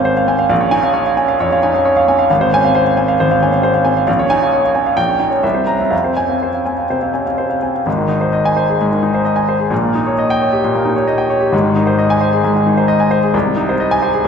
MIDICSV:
0, 0, Header, 1, 2, 480
1, 0, Start_track
1, 0, Key_signature, -4, "minor"
1, 0, Tempo, 447094
1, 546, Time_signature, 4, 2, 24, 8
1, 5344, Tempo, 479233
1, 8237, Key_signature, -4, "major"
1, 8704, Tempo, 459770
1, 11104, Tempo, 451128
1, 14984, End_track
2, 0, Start_track
2, 0, Title_t, "Grand piano"
2, 0, Program_c, 0, 0
2, 0, Control_c, 0, 64, 127
2, 0, Note_on_c, 0, 32, 63
2, 0, Note_on_c, 0, 60, 57
2, 0, Note_on_c, 0, 61, 50
2, 0, Note_on_c, 0, 72, 70
2, 0, Note_on_c, 0, 77, 63
2, 0, Note_on_c, 0, 80, 60
2, 54, Note_off_c, 0, 72, 0
2, 54, Note_on_c, 0, 72, 69
2, 135, Note_off_c, 0, 60, 0
2, 136, Note_off_c, 0, 77, 0
2, 181, Note_on_c, 0, 77, 67
2, 252, Note_off_c, 0, 72, 0
2, 296, Note_on_c, 0, 60, 60
2, 300, Note_off_c, 0, 80, 0
2, 300, Note_on_c, 0, 80, 64
2, 376, Note_off_c, 0, 77, 0
2, 415, Note_on_c, 0, 77, 65
2, 493, Note_off_c, 0, 60, 0
2, 495, Note_off_c, 0, 80, 0
2, 511, Note_off_c, 0, 32, 0
2, 513, Note_off_c, 0, 77, 0
2, 529, Note_on_c, 0, 77, 71
2, 531, Note_on_c, 0, 34, 80
2, 562, Control_c, 0, 64, 0
2, 571, Note_off_c, 0, 61, 0
2, 650, Note_on_c, 0, 61, 59
2, 650, Note_on_c, 0, 73, 65
2, 729, Note_off_c, 0, 77, 0
2, 765, Note_on_c, 0, 80, 87
2, 771, Control_c, 0, 64, 127
2, 771, Note_on_c, 0, 63, 55
2, 849, Note_off_c, 0, 61, 0
2, 849, Note_off_c, 0, 73, 0
2, 892, Note_on_c, 0, 61, 59
2, 892, Note_on_c, 0, 77, 68
2, 898, Note_off_c, 0, 63, 0
2, 967, Note_off_c, 0, 80, 0
2, 1006, Note_on_c, 0, 73, 67
2, 1091, Note_off_c, 0, 61, 0
2, 1091, Note_off_c, 0, 77, 0
2, 1142, Note_on_c, 0, 77, 63
2, 1208, Note_off_c, 0, 73, 0
2, 1255, Note_on_c, 0, 61, 59
2, 1257, Note_on_c, 0, 80, 62
2, 1336, Note_off_c, 0, 77, 0
2, 1377, Note_on_c, 0, 77, 71
2, 1453, Note_off_c, 0, 61, 0
2, 1455, Note_off_c, 0, 80, 0
2, 1470, Note_off_c, 0, 34, 0
2, 1505, Note_on_c, 0, 41, 66
2, 1508, Note_on_c, 0, 73, 71
2, 1574, Note_off_c, 0, 77, 0
2, 1634, Note_on_c, 0, 61, 64
2, 1636, Note_on_c, 0, 77, 68
2, 1698, Note_off_c, 0, 41, 0
2, 1700, Note_off_c, 0, 73, 0
2, 1751, Note_on_c, 0, 80, 67
2, 1753, Note_on_c, 0, 63, 56
2, 1822, Note_off_c, 0, 61, 0
2, 1824, Note_off_c, 0, 77, 0
2, 1870, Note_off_c, 0, 63, 0
2, 1871, Note_on_c, 0, 61, 60
2, 1871, Note_on_c, 0, 77, 63
2, 1941, Note_off_c, 0, 80, 0
2, 1989, Note_on_c, 0, 73, 70
2, 2062, Note_off_c, 0, 61, 0
2, 2062, Note_off_c, 0, 77, 0
2, 2111, Note_on_c, 0, 77, 70
2, 2181, Note_off_c, 0, 73, 0
2, 2235, Note_on_c, 0, 80, 65
2, 2239, Note_on_c, 0, 61, 61
2, 2303, Note_off_c, 0, 77, 0
2, 2348, Note_on_c, 0, 77, 68
2, 2424, Note_off_c, 0, 80, 0
2, 2426, Note_off_c, 0, 61, 0
2, 2456, Note_off_c, 0, 77, 0
2, 2472, Note_on_c, 0, 77, 70
2, 2473, Note_on_c, 0, 32, 77
2, 2485, Control_c, 0, 64, 0
2, 2588, Note_on_c, 0, 72, 67
2, 2589, Note_on_c, 0, 60, 59
2, 2655, Control_c, 0, 64, 127
2, 2661, Note_off_c, 0, 77, 0
2, 2720, Note_on_c, 0, 61, 56
2, 2726, Note_on_c, 0, 80, 91
2, 2777, Note_off_c, 0, 72, 0
2, 2778, Note_off_c, 0, 60, 0
2, 2832, Note_off_c, 0, 61, 0
2, 2839, Note_on_c, 0, 77, 68
2, 2841, Note_on_c, 0, 60, 61
2, 2906, Note_off_c, 0, 80, 0
2, 2953, Note_on_c, 0, 72, 68
2, 3022, Note_off_c, 0, 77, 0
2, 3023, Note_off_c, 0, 60, 0
2, 3069, Note_on_c, 0, 77, 63
2, 3138, Note_off_c, 0, 72, 0
2, 3190, Note_on_c, 0, 60, 59
2, 3190, Note_on_c, 0, 80, 66
2, 3256, Note_off_c, 0, 77, 0
2, 3310, Note_on_c, 0, 77, 73
2, 3375, Note_off_c, 0, 60, 0
2, 3375, Note_off_c, 0, 80, 0
2, 3392, Note_off_c, 0, 32, 0
2, 3437, Note_on_c, 0, 72, 74
2, 3441, Note_on_c, 0, 32, 70
2, 3494, Note_off_c, 0, 77, 0
2, 3552, Note_on_c, 0, 60, 60
2, 3555, Note_on_c, 0, 77, 65
2, 3617, Note_off_c, 0, 72, 0
2, 3679, Note_on_c, 0, 80, 63
2, 3682, Note_on_c, 0, 61, 51
2, 3735, Note_off_c, 0, 60, 0
2, 3736, Note_off_c, 0, 77, 0
2, 3781, Note_on_c, 0, 60, 54
2, 3783, Note_on_c, 0, 77, 62
2, 3788, Note_off_c, 0, 61, 0
2, 3858, Note_off_c, 0, 80, 0
2, 3900, Note_on_c, 0, 72, 67
2, 3970, Note_off_c, 0, 60, 0
2, 3970, Note_off_c, 0, 77, 0
2, 4013, Note_on_c, 0, 77, 63
2, 4089, Note_off_c, 0, 72, 0
2, 4129, Note_on_c, 0, 80, 68
2, 4132, Note_on_c, 0, 60, 57
2, 4207, Note_off_c, 0, 77, 0
2, 4261, Note_on_c, 0, 77, 62
2, 4325, Note_off_c, 0, 80, 0
2, 4327, Note_off_c, 0, 60, 0
2, 4353, Note_off_c, 0, 77, 0
2, 4360, Note_off_c, 0, 32, 0
2, 4369, Note_on_c, 0, 77, 64
2, 4373, Note_on_c, 0, 34, 74
2, 4398, Control_c, 0, 64, 0
2, 4500, Note_on_c, 0, 61, 59
2, 4502, Note_on_c, 0, 73, 65
2, 4563, Control_c, 0, 64, 127
2, 4568, Note_off_c, 0, 77, 0
2, 4616, Note_on_c, 0, 80, 87
2, 4618, Note_on_c, 0, 63, 53
2, 4694, Note_off_c, 0, 61, 0
2, 4695, Note_off_c, 0, 73, 0
2, 4741, Note_off_c, 0, 63, 0
2, 4748, Note_on_c, 0, 61, 51
2, 4751, Note_on_c, 0, 77, 59
2, 4812, Note_off_c, 0, 80, 0
2, 4865, Note_on_c, 0, 73, 64
2, 4938, Note_off_c, 0, 61, 0
2, 4940, Note_off_c, 0, 77, 0
2, 4985, Note_on_c, 0, 77, 58
2, 5057, Note_off_c, 0, 73, 0
2, 5098, Note_on_c, 0, 80, 56
2, 5105, Note_on_c, 0, 61, 53
2, 5177, Note_off_c, 0, 77, 0
2, 5223, Note_on_c, 0, 77, 63
2, 5294, Note_off_c, 0, 80, 0
2, 5298, Note_off_c, 0, 61, 0
2, 5315, Note_off_c, 0, 34, 0
2, 5333, Note_on_c, 0, 79, 83
2, 5336, Note_on_c, 0, 34, 69
2, 5345, Note_off_c, 0, 77, 0
2, 5366, Control_c, 0, 64, 0
2, 5450, Note_on_c, 0, 61, 49
2, 5450, Note_on_c, 0, 73, 55
2, 5520, Control_c, 0, 64, 127
2, 5522, Note_off_c, 0, 79, 0
2, 5564, Note_on_c, 0, 63, 42
2, 5564, Note_on_c, 0, 79, 55
2, 5638, Note_off_c, 0, 61, 0
2, 5638, Note_off_c, 0, 73, 0
2, 5671, Note_on_c, 0, 73, 53
2, 5675, Note_on_c, 0, 61, 45
2, 5684, Note_off_c, 0, 63, 0
2, 5753, Note_off_c, 0, 79, 0
2, 5787, Note_off_c, 0, 34, 0
2, 5796, Note_off_c, 0, 73, 0
2, 5798, Note_off_c, 0, 61, 0
2, 5800, Note_on_c, 0, 76, 55
2, 5802, Note_on_c, 0, 36, 64
2, 5822, Control_c, 0, 64, 0
2, 5910, Note_on_c, 0, 72, 55
2, 5912, Note_on_c, 0, 60, 49
2, 5991, Control_c, 0, 64, 127
2, 5992, Note_off_c, 0, 76, 0
2, 6033, Note_on_c, 0, 61, 40
2, 6037, Note_on_c, 0, 82, 65
2, 6109, Note_off_c, 0, 72, 0
2, 6110, Note_off_c, 0, 60, 0
2, 6159, Note_off_c, 0, 61, 0
2, 6163, Note_on_c, 0, 76, 52
2, 6167, Note_on_c, 0, 60, 46
2, 6234, Note_off_c, 0, 82, 0
2, 6270, Note_off_c, 0, 36, 0
2, 6270, Note_on_c, 0, 41, 58
2, 6273, Note_on_c, 0, 77, 55
2, 6286, Note_off_c, 0, 76, 0
2, 6288, Note_off_c, 0, 60, 0
2, 6308, Control_c, 0, 64, 0
2, 6407, Note_on_c, 0, 60, 43
2, 6410, Note_on_c, 0, 72, 50
2, 6478, Note_off_c, 0, 77, 0
2, 6478, Control_c, 0, 64, 127
2, 6535, Note_on_c, 0, 80, 65
2, 6537, Note_on_c, 0, 61, 41
2, 6606, Note_off_c, 0, 60, 0
2, 6608, Note_off_c, 0, 72, 0
2, 6659, Note_off_c, 0, 61, 0
2, 6662, Note_on_c, 0, 60, 46
2, 6664, Note_on_c, 0, 77, 48
2, 6731, Note_off_c, 0, 80, 0
2, 6795, Note_on_c, 0, 72, 51
2, 6855, Note_off_c, 0, 60, 0
2, 6856, Note_off_c, 0, 77, 0
2, 6914, Note_on_c, 0, 77, 46
2, 6981, Note_off_c, 0, 72, 0
2, 7025, Note_on_c, 0, 80, 52
2, 7032, Note_on_c, 0, 60, 43
2, 7101, Note_off_c, 0, 77, 0
2, 7148, Note_on_c, 0, 77, 50
2, 7217, Note_off_c, 0, 80, 0
2, 7220, Note_off_c, 0, 60, 0
2, 7226, Note_off_c, 0, 41, 0
2, 7272, Note_on_c, 0, 48, 46
2, 7273, Note_on_c, 0, 72, 52
2, 7340, Note_off_c, 0, 77, 0
2, 7393, Note_on_c, 0, 77, 49
2, 7395, Note_on_c, 0, 60, 45
2, 7463, Note_off_c, 0, 48, 0
2, 7464, Note_off_c, 0, 72, 0
2, 7506, Note_on_c, 0, 80, 48
2, 7510, Note_on_c, 0, 61, 39
2, 7585, Note_off_c, 0, 77, 0
2, 7586, Note_off_c, 0, 60, 0
2, 7629, Note_on_c, 0, 77, 47
2, 7631, Note_off_c, 0, 61, 0
2, 7631, Note_on_c, 0, 60, 44
2, 7702, Note_off_c, 0, 80, 0
2, 7749, Note_on_c, 0, 72, 49
2, 7824, Note_off_c, 0, 77, 0
2, 7825, Note_off_c, 0, 60, 0
2, 7868, Note_on_c, 0, 77, 50
2, 7945, Note_off_c, 0, 72, 0
2, 7993, Note_on_c, 0, 80, 45
2, 7997, Note_on_c, 0, 60, 43
2, 8066, Note_off_c, 0, 77, 0
2, 8126, Note_on_c, 0, 77, 44
2, 8188, Note_off_c, 0, 80, 0
2, 8190, Note_off_c, 0, 60, 0
2, 8232, Note_on_c, 0, 32, 65
2, 8241, Note_off_c, 0, 77, 0
2, 8244, Note_on_c, 0, 44, 66
2, 8255, Control_c, 0, 64, 0
2, 8350, Note_on_c, 0, 51, 54
2, 8420, Control_c, 0, 64, 127
2, 8455, Note_on_c, 0, 63, 58
2, 8540, Note_off_c, 0, 51, 0
2, 8581, Note_on_c, 0, 72, 55
2, 8650, Note_off_c, 0, 63, 0
2, 8703, Note_on_c, 0, 75, 61
2, 8773, Note_off_c, 0, 72, 0
2, 8831, Note_on_c, 0, 80, 79
2, 8897, Note_off_c, 0, 75, 0
2, 8948, Note_on_c, 0, 72, 57
2, 9021, Note_off_c, 0, 80, 0
2, 9083, Note_on_c, 0, 68, 62
2, 9139, Note_off_c, 0, 72, 0
2, 9154, Note_off_c, 0, 32, 0
2, 9161, Note_off_c, 0, 44, 0
2, 9204, Note_on_c, 0, 44, 67
2, 9266, Note_off_c, 0, 68, 0
2, 9320, Note_on_c, 0, 51, 54
2, 9428, Note_on_c, 0, 63, 57
2, 9503, Note_off_c, 0, 51, 0
2, 9551, Note_on_c, 0, 72, 58
2, 9615, Note_off_c, 0, 63, 0
2, 9662, Note_on_c, 0, 75, 59
2, 9736, Note_off_c, 0, 72, 0
2, 9775, Note_on_c, 0, 80, 66
2, 9851, Note_off_c, 0, 75, 0
2, 9908, Note_on_c, 0, 72, 60
2, 9969, Note_off_c, 0, 80, 0
2, 10027, Note_on_c, 0, 68, 57
2, 10097, Note_off_c, 0, 72, 0
2, 10123, Note_off_c, 0, 44, 0
2, 10134, Note_on_c, 0, 34, 66
2, 10145, Note_off_c, 0, 68, 0
2, 10146, Note_on_c, 0, 46, 70
2, 10160, Control_c, 0, 64, 0
2, 10262, Note_on_c, 0, 58, 53
2, 10345, Control_c, 0, 64, 127
2, 10395, Note_on_c, 0, 63, 62
2, 10458, Note_off_c, 0, 58, 0
2, 10514, Note_on_c, 0, 73, 59
2, 10584, Note_off_c, 0, 63, 0
2, 10640, Note_on_c, 0, 75, 64
2, 10703, Note_off_c, 0, 73, 0
2, 10762, Note_on_c, 0, 79, 76
2, 10826, Note_off_c, 0, 75, 0
2, 10881, Note_on_c, 0, 73, 55
2, 10946, Note_off_c, 0, 79, 0
2, 10997, Note_on_c, 0, 67, 60
2, 11064, Note_off_c, 0, 73, 0
2, 11072, Note_off_c, 0, 34, 0
2, 11078, Note_off_c, 0, 46, 0
2, 11116, Note_on_c, 0, 46, 66
2, 11183, Note_off_c, 0, 67, 0
2, 11226, Note_on_c, 0, 58, 56
2, 11340, Note_on_c, 0, 63, 60
2, 11417, Note_off_c, 0, 58, 0
2, 11457, Note_on_c, 0, 73, 60
2, 11533, Note_off_c, 0, 63, 0
2, 11576, Note_on_c, 0, 75, 64
2, 11651, Note_off_c, 0, 73, 0
2, 11687, Note_on_c, 0, 79, 63
2, 11770, Note_off_c, 0, 75, 0
2, 11813, Note_on_c, 0, 73, 63
2, 11886, Note_off_c, 0, 79, 0
2, 11929, Note_on_c, 0, 67, 62
2, 12009, Note_off_c, 0, 73, 0
2, 12038, Note_off_c, 0, 46, 0
2, 12048, Note_on_c, 0, 32, 69
2, 12055, Note_off_c, 0, 67, 0
2, 12064, Note_on_c, 0, 44, 75
2, 12078, Control_c, 0, 64, 0
2, 12174, Note_on_c, 0, 51, 55
2, 12266, Control_c, 0, 64, 127
2, 12303, Note_on_c, 0, 63, 61
2, 12369, Note_off_c, 0, 51, 0
2, 12422, Note_on_c, 0, 72, 60
2, 12493, Note_off_c, 0, 63, 0
2, 12546, Note_on_c, 0, 75, 65
2, 12612, Note_off_c, 0, 72, 0
2, 12668, Note_on_c, 0, 80, 77
2, 12733, Note_off_c, 0, 75, 0
2, 12783, Note_on_c, 0, 72, 62
2, 12854, Note_off_c, 0, 80, 0
2, 12912, Note_on_c, 0, 68, 66
2, 12973, Note_off_c, 0, 72, 0
2, 12983, Note_off_c, 0, 32, 0
2, 12991, Note_off_c, 0, 44, 0
2, 13029, Note_on_c, 0, 44, 67
2, 13098, Note_off_c, 0, 68, 0
2, 13148, Note_on_c, 0, 51, 56
2, 13270, Note_on_c, 0, 63, 60
2, 13338, Note_off_c, 0, 51, 0
2, 13385, Note_on_c, 0, 72, 60
2, 13458, Note_off_c, 0, 63, 0
2, 13498, Note_on_c, 0, 75, 71
2, 13576, Note_off_c, 0, 72, 0
2, 13624, Note_on_c, 0, 80, 67
2, 13692, Note_off_c, 0, 75, 0
2, 13739, Note_on_c, 0, 72, 65
2, 13816, Note_off_c, 0, 80, 0
2, 13870, Note_on_c, 0, 68, 63
2, 13934, Note_off_c, 0, 72, 0
2, 13960, Note_off_c, 0, 44, 0
2, 13987, Note_off_c, 0, 68, 0
2, 13988, Note_on_c, 0, 36, 77
2, 14003, Control_c, 0, 64, 0
2, 14103, Note_on_c, 0, 48, 59
2, 14176, Control_c, 0, 64, 127
2, 14228, Note_on_c, 0, 63, 63
2, 14295, Note_off_c, 0, 48, 0
2, 14359, Note_on_c, 0, 72, 64
2, 14416, Note_off_c, 0, 63, 0
2, 14477, Note_on_c, 0, 75, 70
2, 14542, Note_off_c, 0, 72, 0
2, 14596, Note_on_c, 0, 80, 87
2, 14661, Note_off_c, 0, 75, 0
2, 14714, Note_on_c, 0, 72, 61
2, 14782, Note_off_c, 0, 80, 0
2, 14828, Note_on_c, 0, 68, 68
2, 14902, Note_off_c, 0, 72, 0
2, 14918, Note_off_c, 0, 36, 0
2, 14950, Note_on_c, 0, 36, 68
2, 14984, Note_off_c, 0, 36, 0
2, 14984, Note_off_c, 0, 68, 0
2, 14984, End_track
0, 0, End_of_file